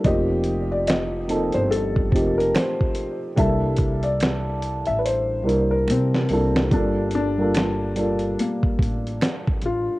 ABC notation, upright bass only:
X:1
M:4/4
L:1/16
Q:"Swing 16ths" 1/4=72
K:Gm
V:1 name="Upright bass" clef=bass
F,,,6- F,,, G,,,3 F,,,2 z4 | C,,6- C,, A,,,3 C,,2 C,2 C,,2 | G,,,8 z2 A,,,2 z2 A,,, z |]